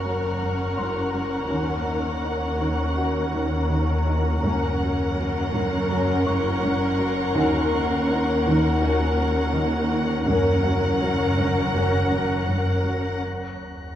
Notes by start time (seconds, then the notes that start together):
Already playing: F#1 F#2 C#4 A#4 C#5 F#5 A#5 C#6 F6
0.02 F#3 C#4 A#4
0.40 F#2
0.77 F#2 C6
1.14 F#3
1.48 D#2 D#3 C#4 F#4
1.87 D#4
2.23 D#4
2.60 D#3
2.96 C#4 D#4 F#4
3.32 D#3
3.69 D#3
4.06 D#4 A#5
4.42 F#1 F#2 C#4 A#4 C#5 F#5 A#5
4.79 F#3
5.16 F#3 C6
5.53 F#2
5.89 F#3 C#4 A#4 C#6
6.26 F#2 C#5 C#6
6.63 F#2
6.99 F#3
7.35 D#2 D#3 C#4 F#4
7.72 D#4
8.09 D#4
8.45 D#3
8.81 C#4 D#4 F#4
9.18 D#3
9.54 D#3
9.91 D#4
10.27 F#1 F#2 C#4 A#4 C#5 F#5 F#6 A#6
10.63 F#3 F#5
11.00 F#3
11.37 F#2
11.73 F#3 C#4 A#4
12.10 F#2
12.47 F#2
12.83 F#3
13.21 D#2